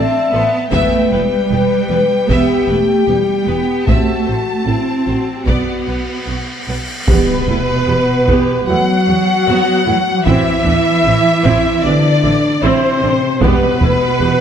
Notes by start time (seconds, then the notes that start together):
Already playing: C4 E5 A5
0.32 A1 A3 B3 C5
0.71 E1 A3 B3 B4 E5 G5, taiko
1.11 E1 G3 B3 B4
1.51 E1 B3 G4
1.90 E1 B3 B4
2.29 E1 B3 G4 E5, taiko
2.68 E1 A3 B3 B4
3.06 E1 G3 B3 G4
3.47 E1 B3 B4
3.86 A1 A3 C4 F#4 E5 A5, taiko, cymbal swell
4.26 A1 C4 C5
4.66 A1 C4 E4 A4
5.05 A1 C4 F#4 C5
5.28 G4
5.46 B1 B3 F#4 D5 F#5, taiko
5.87 B1 B3 B4
6.27 B1 B3 F#4
6.68 B1 B3 B4
7.07 E2 B2 G3 B3 G4 B4, taiko, impact
7.48 E2 A3 E4, taiko low
7.87 E2 B3 G4
8.28 E2 B3 G4, taiko
8.67 E2 F#3 A3 B3 E4 F#4 F#5
9.07 E2 B3 F#4
9.47 E2 B3 F#4
9.86 E2 A3 E4
10.25 A1 E3 C4 E4 E5, taiko
10.65 A1 B3 D4, taiko low
11.05 A1 C4 E4
11.44 A1 C4 E4, taiko
11.83 A1 C3 D3 E3 B3 D4 D5
12.23 A1 C4 E4
12.63 A1 C3 C4 E4 C5
13.02 A1 C4 D4
13.40 E1 B2 G3 B3 G4 B4, taiko
13.81 E1 A3 E4, taiko low
14.21 E1 B3 G4